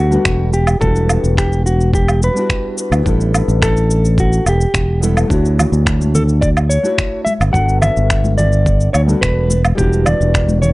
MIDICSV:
0, 0, Header, 1, 5, 480
1, 0, Start_track
1, 0, Tempo, 560748
1, 698, Time_signature, 4, 2, 24, 8
1, 9185, End_track
2, 0, Start_track
2, 0, Title_t, "Clean electric guitar"
2, 0, Program_c, 0, 27
2, 0, Note_on_c, 0, 66, 96
2, 423, Note_off_c, 0, 66, 0
2, 458, Note_on_c, 0, 67, 87
2, 688, Note_off_c, 0, 67, 0
2, 691, Note_on_c, 0, 69, 101
2, 1140, Note_off_c, 0, 69, 0
2, 1185, Note_on_c, 0, 67, 83
2, 1404, Note_off_c, 0, 67, 0
2, 1422, Note_on_c, 0, 66, 83
2, 1643, Note_off_c, 0, 66, 0
2, 1666, Note_on_c, 0, 67, 85
2, 1909, Note_off_c, 0, 67, 0
2, 1917, Note_on_c, 0, 71, 87
2, 2354, Note_off_c, 0, 71, 0
2, 3104, Note_on_c, 0, 69, 106
2, 3547, Note_off_c, 0, 69, 0
2, 3594, Note_on_c, 0, 66, 92
2, 3832, Note_off_c, 0, 66, 0
2, 3839, Note_on_c, 0, 67, 83
2, 4275, Note_off_c, 0, 67, 0
2, 5263, Note_on_c, 0, 69, 92
2, 5327, Note_off_c, 0, 69, 0
2, 5490, Note_on_c, 0, 74, 95
2, 5556, Note_off_c, 0, 74, 0
2, 5731, Note_on_c, 0, 73, 99
2, 6180, Note_off_c, 0, 73, 0
2, 6202, Note_on_c, 0, 76, 97
2, 6269, Note_off_c, 0, 76, 0
2, 6444, Note_on_c, 0, 78, 115
2, 6673, Note_off_c, 0, 78, 0
2, 6691, Note_on_c, 0, 76, 103
2, 7166, Note_off_c, 0, 76, 0
2, 7170, Note_on_c, 0, 74, 104
2, 7620, Note_off_c, 0, 74, 0
2, 7646, Note_on_c, 0, 73, 87
2, 7712, Note_off_c, 0, 73, 0
2, 7887, Note_on_c, 0, 71, 96
2, 8228, Note_off_c, 0, 71, 0
2, 8368, Note_on_c, 0, 67, 97
2, 8609, Note_on_c, 0, 74, 88
2, 8620, Note_off_c, 0, 67, 0
2, 9085, Note_off_c, 0, 74, 0
2, 9088, Note_on_c, 0, 73, 94
2, 9154, Note_off_c, 0, 73, 0
2, 9185, End_track
3, 0, Start_track
3, 0, Title_t, "Nylon-string guitar"
3, 0, Program_c, 1, 24
3, 88, Note_on_c, 1, 55, 69
3, 94, Note_on_c, 1, 59, 64
3, 100, Note_on_c, 1, 62, 61
3, 103, Note_on_c, 1, 66, 63
3, 112, Note_on_c, 1, 69, 73
3, 438, Note_off_c, 1, 55, 0
3, 441, Note_off_c, 1, 59, 0
3, 444, Note_off_c, 1, 62, 0
3, 445, Note_off_c, 1, 66, 0
3, 450, Note_off_c, 1, 69, 0
3, 680, Note_on_c, 1, 55, 77
3, 694, Note_on_c, 1, 59, 68
3, 703, Note_on_c, 1, 62, 65
3, 715, Note_on_c, 1, 64, 67
3, 726, Note_on_c, 1, 66, 82
3, 1981, Note_off_c, 1, 55, 0
3, 1988, Note_off_c, 1, 59, 0
3, 1993, Note_off_c, 1, 62, 0
3, 1996, Note_on_c, 1, 55, 70
3, 1999, Note_off_c, 1, 64, 0
3, 2004, Note_off_c, 1, 66, 0
3, 2010, Note_on_c, 1, 59, 63
3, 2024, Note_on_c, 1, 62, 59
3, 2034, Note_on_c, 1, 64, 62
3, 2048, Note_on_c, 1, 66, 75
3, 2577, Note_off_c, 1, 55, 0
3, 2585, Note_off_c, 1, 59, 0
3, 2592, Note_off_c, 1, 62, 0
3, 2593, Note_on_c, 1, 55, 75
3, 2597, Note_off_c, 1, 64, 0
3, 2603, Note_off_c, 1, 66, 0
3, 2607, Note_on_c, 1, 59, 71
3, 2619, Note_on_c, 1, 62, 64
3, 2630, Note_on_c, 1, 64, 69
3, 2642, Note_on_c, 1, 69, 83
3, 3897, Note_off_c, 1, 55, 0
3, 3905, Note_off_c, 1, 59, 0
3, 3910, Note_off_c, 1, 62, 0
3, 3916, Note_off_c, 1, 64, 0
3, 3922, Note_off_c, 1, 69, 0
3, 4281, Note_on_c, 1, 55, 68
3, 4288, Note_on_c, 1, 59, 63
3, 4298, Note_on_c, 1, 62, 62
3, 4302, Note_on_c, 1, 64, 62
3, 4308, Note_on_c, 1, 69, 78
3, 4501, Note_off_c, 1, 55, 0
3, 4504, Note_off_c, 1, 59, 0
3, 4509, Note_off_c, 1, 62, 0
3, 4511, Note_off_c, 1, 64, 0
3, 4514, Note_off_c, 1, 69, 0
3, 4516, Note_on_c, 1, 57, 72
3, 4531, Note_on_c, 1, 62, 66
3, 4543, Note_on_c, 1, 64, 67
3, 4554, Note_on_c, 1, 66, 68
3, 4567, Note_on_c, 1, 73, 82
3, 5819, Note_off_c, 1, 57, 0
3, 5826, Note_off_c, 1, 62, 0
3, 5833, Note_off_c, 1, 64, 0
3, 5838, Note_off_c, 1, 66, 0
3, 5845, Note_off_c, 1, 73, 0
3, 5846, Note_on_c, 1, 57, 68
3, 5851, Note_on_c, 1, 62, 62
3, 5857, Note_on_c, 1, 64, 66
3, 5865, Note_on_c, 1, 66, 63
3, 5869, Note_on_c, 1, 73, 73
3, 6197, Note_off_c, 1, 57, 0
3, 6199, Note_off_c, 1, 62, 0
3, 6202, Note_off_c, 1, 64, 0
3, 6206, Note_off_c, 1, 66, 0
3, 6208, Note_off_c, 1, 73, 0
3, 6433, Note_on_c, 1, 55, 72
3, 6446, Note_on_c, 1, 59, 69
3, 6459, Note_on_c, 1, 62, 72
3, 6468, Note_on_c, 1, 66, 68
3, 6480, Note_off_c, 1, 55, 0
3, 6484, Note_on_c, 1, 69, 84
3, 7744, Note_off_c, 1, 59, 0
3, 7751, Note_off_c, 1, 62, 0
3, 7755, Note_off_c, 1, 66, 0
3, 7761, Note_on_c, 1, 55, 67
3, 7763, Note_off_c, 1, 69, 0
3, 7770, Note_on_c, 1, 59, 63
3, 7775, Note_on_c, 1, 62, 66
3, 7783, Note_on_c, 1, 66, 62
3, 7789, Note_on_c, 1, 69, 76
3, 8114, Note_off_c, 1, 55, 0
3, 8118, Note_off_c, 1, 59, 0
3, 8121, Note_off_c, 1, 62, 0
3, 8125, Note_off_c, 1, 66, 0
3, 8128, Note_off_c, 1, 69, 0
3, 8346, Note_on_c, 1, 55, 83
3, 8362, Note_on_c, 1, 59, 72
3, 8373, Note_on_c, 1, 62, 71
3, 8386, Note_on_c, 1, 64, 74
3, 8397, Note_on_c, 1, 66, 90
3, 9185, Note_off_c, 1, 55, 0
3, 9185, Note_off_c, 1, 59, 0
3, 9185, Note_off_c, 1, 62, 0
3, 9185, Note_off_c, 1, 64, 0
3, 9185, Note_off_c, 1, 66, 0
3, 9185, End_track
4, 0, Start_track
4, 0, Title_t, "Fingered electric bass"
4, 0, Program_c, 2, 33
4, 0, Note_on_c, 2, 38, 81
4, 140, Note_off_c, 2, 38, 0
4, 219, Note_on_c, 2, 28, 88
4, 635, Note_off_c, 2, 28, 0
4, 697, Note_on_c, 2, 28, 93
4, 995, Note_off_c, 2, 28, 0
4, 1058, Note_on_c, 2, 28, 95
4, 1954, Note_off_c, 2, 28, 0
4, 2495, Note_on_c, 2, 38, 94
4, 2577, Note_off_c, 2, 38, 0
4, 2619, Note_on_c, 2, 33, 93
4, 2915, Note_off_c, 2, 33, 0
4, 2980, Note_on_c, 2, 33, 98
4, 3756, Note_off_c, 2, 33, 0
4, 3818, Note_on_c, 2, 28, 88
4, 3979, Note_off_c, 2, 28, 0
4, 4058, Note_on_c, 2, 28, 85
4, 4475, Note_off_c, 2, 28, 0
4, 4540, Note_on_c, 2, 38, 89
4, 4836, Note_off_c, 2, 38, 0
4, 4898, Note_on_c, 2, 38, 94
4, 5794, Note_off_c, 2, 38, 0
4, 6339, Note_on_c, 2, 31, 95
4, 6418, Note_off_c, 2, 31, 0
4, 6453, Note_on_c, 2, 31, 93
4, 6753, Note_off_c, 2, 31, 0
4, 6822, Note_on_c, 2, 31, 104
4, 7596, Note_off_c, 2, 31, 0
4, 7657, Note_on_c, 2, 38, 92
4, 7819, Note_off_c, 2, 38, 0
4, 7895, Note_on_c, 2, 28, 90
4, 8314, Note_off_c, 2, 28, 0
4, 8373, Note_on_c, 2, 28, 96
4, 8673, Note_off_c, 2, 28, 0
4, 8736, Note_on_c, 2, 28, 100
4, 9185, Note_off_c, 2, 28, 0
4, 9185, End_track
5, 0, Start_track
5, 0, Title_t, "Drums"
5, 103, Note_on_c, 9, 69, 32
5, 188, Note_off_c, 9, 69, 0
5, 216, Note_on_c, 9, 26, 99
5, 217, Note_on_c, 9, 36, 103
5, 218, Note_on_c, 9, 69, 45
5, 301, Note_off_c, 9, 26, 0
5, 303, Note_off_c, 9, 36, 0
5, 304, Note_off_c, 9, 69, 0
5, 456, Note_on_c, 9, 69, 73
5, 542, Note_off_c, 9, 69, 0
5, 574, Note_on_c, 9, 77, 78
5, 577, Note_on_c, 9, 69, 32
5, 660, Note_off_c, 9, 77, 0
5, 662, Note_off_c, 9, 69, 0
5, 697, Note_on_c, 9, 36, 105
5, 698, Note_on_c, 9, 69, 45
5, 783, Note_off_c, 9, 36, 0
5, 783, Note_off_c, 9, 69, 0
5, 820, Note_on_c, 9, 69, 28
5, 905, Note_off_c, 9, 69, 0
5, 936, Note_on_c, 9, 77, 69
5, 939, Note_on_c, 9, 69, 75
5, 1022, Note_off_c, 9, 77, 0
5, 1024, Note_off_c, 9, 69, 0
5, 1064, Note_on_c, 9, 69, 31
5, 1150, Note_off_c, 9, 69, 0
5, 1176, Note_on_c, 9, 36, 105
5, 1183, Note_on_c, 9, 26, 97
5, 1185, Note_on_c, 9, 69, 44
5, 1262, Note_off_c, 9, 36, 0
5, 1269, Note_off_c, 9, 26, 0
5, 1271, Note_off_c, 9, 69, 0
5, 1306, Note_on_c, 9, 69, 30
5, 1392, Note_off_c, 9, 69, 0
5, 1426, Note_on_c, 9, 69, 73
5, 1512, Note_off_c, 9, 69, 0
5, 1547, Note_on_c, 9, 69, 33
5, 1633, Note_off_c, 9, 69, 0
5, 1657, Note_on_c, 9, 36, 108
5, 1668, Note_on_c, 9, 69, 46
5, 1742, Note_off_c, 9, 36, 0
5, 1754, Note_off_c, 9, 69, 0
5, 1784, Note_on_c, 9, 77, 68
5, 1786, Note_on_c, 9, 69, 29
5, 1870, Note_off_c, 9, 77, 0
5, 1872, Note_off_c, 9, 69, 0
5, 1904, Note_on_c, 9, 69, 76
5, 1990, Note_off_c, 9, 69, 0
5, 2025, Note_on_c, 9, 69, 33
5, 2111, Note_off_c, 9, 69, 0
5, 2137, Note_on_c, 9, 36, 110
5, 2139, Note_on_c, 9, 26, 93
5, 2141, Note_on_c, 9, 69, 44
5, 2222, Note_off_c, 9, 36, 0
5, 2224, Note_off_c, 9, 26, 0
5, 2227, Note_off_c, 9, 69, 0
5, 2379, Note_on_c, 9, 69, 77
5, 2465, Note_off_c, 9, 69, 0
5, 2501, Note_on_c, 9, 77, 76
5, 2503, Note_on_c, 9, 69, 36
5, 2586, Note_off_c, 9, 77, 0
5, 2589, Note_off_c, 9, 69, 0
5, 2618, Note_on_c, 9, 36, 105
5, 2623, Note_on_c, 9, 69, 44
5, 2704, Note_off_c, 9, 36, 0
5, 2709, Note_off_c, 9, 69, 0
5, 2745, Note_on_c, 9, 69, 28
5, 2831, Note_off_c, 9, 69, 0
5, 2863, Note_on_c, 9, 77, 72
5, 2865, Note_on_c, 9, 69, 76
5, 2948, Note_off_c, 9, 77, 0
5, 2950, Note_off_c, 9, 69, 0
5, 2986, Note_on_c, 9, 69, 34
5, 3072, Note_off_c, 9, 69, 0
5, 3097, Note_on_c, 9, 36, 102
5, 3102, Note_on_c, 9, 26, 95
5, 3104, Note_on_c, 9, 69, 43
5, 3183, Note_off_c, 9, 36, 0
5, 3188, Note_off_c, 9, 26, 0
5, 3190, Note_off_c, 9, 69, 0
5, 3226, Note_on_c, 9, 69, 28
5, 3312, Note_off_c, 9, 69, 0
5, 3344, Note_on_c, 9, 69, 73
5, 3429, Note_off_c, 9, 69, 0
5, 3467, Note_on_c, 9, 69, 34
5, 3552, Note_off_c, 9, 69, 0
5, 3577, Note_on_c, 9, 36, 106
5, 3581, Note_on_c, 9, 69, 42
5, 3663, Note_off_c, 9, 36, 0
5, 3667, Note_off_c, 9, 69, 0
5, 3704, Note_on_c, 9, 69, 32
5, 3790, Note_off_c, 9, 69, 0
5, 3821, Note_on_c, 9, 77, 55
5, 3823, Note_on_c, 9, 69, 75
5, 3907, Note_off_c, 9, 77, 0
5, 3909, Note_off_c, 9, 69, 0
5, 3944, Note_on_c, 9, 69, 32
5, 4030, Note_off_c, 9, 69, 0
5, 4057, Note_on_c, 9, 36, 108
5, 4061, Note_on_c, 9, 26, 96
5, 4064, Note_on_c, 9, 69, 45
5, 4143, Note_off_c, 9, 36, 0
5, 4147, Note_off_c, 9, 26, 0
5, 4149, Note_off_c, 9, 69, 0
5, 4305, Note_on_c, 9, 69, 75
5, 4391, Note_off_c, 9, 69, 0
5, 4425, Note_on_c, 9, 77, 76
5, 4427, Note_on_c, 9, 69, 33
5, 4511, Note_off_c, 9, 77, 0
5, 4513, Note_off_c, 9, 69, 0
5, 4539, Note_on_c, 9, 36, 96
5, 4545, Note_on_c, 9, 69, 43
5, 4624, Note_off_c, 9, 36, 0
5, 4631, Note_off_c, 9, 69, 0
5, 4669, Note_on_c, 9, 69, 26
5, 4754, Note_off_c, 9, 69, 0
5, 4787, Note_on_c, 9, 64, 72
5, 4788, Note_on_c, 9, 77, 77
5, 4790, Note_on_c, 9, 69, 77
5, 4872, Note_off_c, 9, 64, 0
5, 4873, Note_off_c, 9, 77, 0
5, 4876, Note_off_c, 9, 69, 0
5, 4905, Note_on_c, 9, 69, 31
5, 4991, Note_off_c, 9, 69, 0
5, 5018, Note_on_c, 9, 36, 96
5, 5022, Note_on_c, 9, 26, 89
5, 5024, Note_on_c, 9, 69, 40
5, 5104, Note_off_c, 9, 36, 0
5, 5108, Note_off_c, 9, 26, 0
5, 5110, Note_off_c, 9, 69, 0
5, 5147, Note_on_c, 9, 63, 70
5, 5148, Note_on_c, 9, 69, 31
5, 5233, Note_off_c, 9, 63, 0
5, 5233, Note_off_c, 9, 69, 0
5, 5264, Note_on_c, 9, 64, 73
5, 5264, Note_on_c, 9, 69, 69
5, 5350, Note_off_c, 9, 64, 0
5, 5350, Note_off_c, 9, 69, 0
5, 5382, Note_on_c, 9, 69, 31
5, 5467, Note_off_c, 9, 69, 0
5, 5498, Note_on_c, 9, 36, 109
5, 5499, Note_on_c, 9, 69, 41
5, 5584, Note_off_c, 9, 36, 0
5, 5585, Note_off_c, 9, 69, 0
5, 5622, Note_on_c, 9, 77, 68
5, 5625, Note_on_c, 9, 69, 27
5, 5708, Note_off_c, 9, 77, 0
5, 5710, Note_off_c, 9, 69, 0
5, 5741, Note_on_c, 9, 69, 75
5, 5826, Note_off_c, 9, 69, 0
5, 5862, Note_on_c, 9, 69, 31
5, 5947, Note_off_c, 9, 69, 0
5, 5976, Note_on_c, 9, 36, 106
5, 5979, Note_on_c, 9, 26, 100
5, 5981, Note_on_c, 9, 69, 45
5, 6062, Note_off_c, 9, 36, 0
5, 6064, Note_off_c, 9, 26, 0
5, 6066, Note_off_c, 9, 69, 0
5, 6218, Note_on_c, 9, 63, 67
5, 6220, Note_on_c, 9, 69, 77
5, 6304, Note_off_c, 9, 63, 0
5, 6306, Note_off_c, 9, 69, 0
5, 6343, Note_on_c, 9, 77, 82
5, 6345, Note_on_c, 9, 69, 33
5, 6429, Note_off_c, 9, 77, 0
5, 6431, Note_off_c, 9, 69, 0
5, 6455, Note_on_c, 9, 36, 96
5, 6463, Note_on_c, 9, 69, 45
5, 6541, Note_off_c, 9, 36, 0
5, 6548, Note_off_c, 9, 69, 0
5, 6582, Note_on_c, 9, 69, 26
5, 6667, Note_off_c, 9, 69, 0
5, 6696, Note_on_c, 9, 64, 68
5, 6696, Note_on_c, 9, 77, 79
5, 6698, Note_on_c, 9, 69, 72
5, 6781, Note_off_c, 9, 77, 0
5, 6782, Note_off_c, 9, 64, 0
5, 6784, Note_off_c, 9, 69, 0
5, 6820, Note_on_c, 9, 69, 31
5, 6906, Note_off_c, 9, 69, 0
5, 6934, Note_on_c, 9, 26, 93
5, 6935, Note_on_c, 9, 36, 94
5, 6937, Note_on_c, 9, 69, 42
5, 7020, Note_off_c, 9, 26, 0
5, 7021, Note_off_c, 9, 36, 0
5, 7022, Note_off_c, 9, 69, 0
5, 7055, Note_on_c, 9, 63, 72
5, 7059, Note_on_c, 9, 69, 28
5, 7141, Note_off_c, 9, 63, 0
5, 7145, Note_off_c, 9, 69, 0
5, 7175, Note_on_c, 9, 69, 70
5, 7181, Note_on_c, 9, 64, 82
5, 7261, Note_off_c, 9, 69, 0
5, 7267, Note_off_c, 9, 64, 0
5, 7298, Note_on_c, 9, 69, 32
5, 7384, Note_off_c, 9, 69, 0
5, 7414, Note_on_c, 9, 36, 106
5, 7417, Note_on_c, 9, 69, 38
5, 7500, Note_off_c, 9, 36, 0
5, 7503, Note_off_c, 9, 69, 0
5, 7538, Note_on_c, 9, 69, 29
5, 7623, Note_off_c, 9, 69, 0
5, 7654, Note_on_c, 9, 77, 59
5, 7657, Note_on_c, 9, 69, 76
5, 7740, Note_off_c, 9, 77, 0
5, 7742, Note_off_c, 9, 69, 0
5, 7781, Note_on_c, 9, 69, 30
5, 7866, Note_off_c, 9, 69, 0
5, 7894, Note_on_c, 9, 36, 99
5, 7900, Note_on_c, 9, 26, 96
5, 7902, Note_on_c, 9, 69, 42
5, 7979, Note_off_c, 9, 36, 0
5, 7985, Note_off_c, 9, 26, 0
5, 7987, Note_off_c, 9, 69, 0
5, 8133, Note_on_c, 9, 63, 62
5, 8137, Note_on_c, 9, 69, 78
5, 8218, Note_off_c, 9, 63, 0
5, 8223, Note_off_c, 9, 69, 0
5, 8257, Note_on_c, 9, 77, 84
5, 8259, Note_on_c, 9, 69, 33
5, 8342, Note_off_c, 9, 77, 0
5, 8344, Note_off_c, 9, 69, 0
5, 8373, Note_on_c, 9, 36, 93
5, 8376, Note_on_c, 9, 69, 41
5, 8459, Note_off_c, 9, 36, 0
5, 8462, Note_off_c, 9, 69, 0
5, 8500, Note_on_c, 9, 69, 26
5, 8585, Note_off_c, 9, 69, 0
5, 8612, Note_on_c, 9, 77, 79
5, 8615, Note_on_c, 9, 69, 71
5, 8618, Note_on_c, 9, 64, 71
5, 8698, Note_off_c, 9, 77, 0
5, 8700, Note_off_c, 9, 69, 0
5, 8704, Note_off_c, 9, 64, 0
5, 8743, Note_on_c, 9, 69, 29
5, 8828, Note_off_c, 9, 69, 0
5, 8854, Note_on_c, 9, 36, 98
5, 8858, Note_on_c, 9, 26, 90
5, 8860, Note_on_c, 9, 69, 42
5, 8939, Note_off_c, 9, 36, 0
5, 8943, Note_off_c, 9, 26, 0
5, 8946, Note_off_c, 9, 69, 0
5, 8975, Note_on_c, 9, 63, 71
5, 8979, Note_on_c, 9, 69, 29
5, 9061, Note_off_c, 9, 63, 0
5, 9065, Note_off_c, 9, 69, 0
5, 9094, Note_on_c, 9, 64, 81
5, 9099, Note_on_c, 9, 69, 68
5, 9179, Note_off_c, 9, 64, 0
5, 9185, Note_off_c, 9, 69, 0
5, 9185, End_track
0, 0, End_of_file